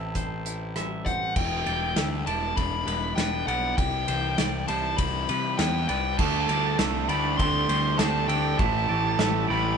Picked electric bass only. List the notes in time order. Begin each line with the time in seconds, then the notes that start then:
Already playing: A1
1.36 E1
1.67 E1
1.97 D2
2.27 E1
2.57 E1
2.86 E1
3.17 E1
3.47 B1
3.78 C2
4.09 C2
4.39 C2
4.69 C2
4.98 C2
5.29 C3
5.59 E2
5.89 C2
6.19 D2
6.48 D2
6.79 C2
7.08 D2
7.39 D2
7.69 D2
7.99 D2
8.27 D2
8.59 A1
8.89 A1
9.19 A1
9.49 A1